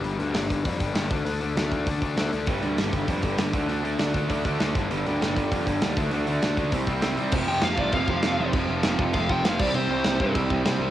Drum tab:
CC |--------|--------|--------|--------|
HH |oooooooo|oooooooo|oooooooo|oooooooo|
SD |--o---o-|--o---o-|--o---o-|--o---o-|
BD |---ooo-o|---ooo--|o--ooo-o|---ooo-o|

CC |--------|--------|x-x-x-x-|x-x-x-xx|
HH |oooooooo|oooooooo|--------|--------|
SD |--o---o-|--o---o-|--o---o-|--o---o-|
BD |---ooo-o|---ooo--|o--ooo--|o--ooo-o|

CC |x-x-x-x-|
HH |--------|
SD |--o---o-|
BD |---ooo--|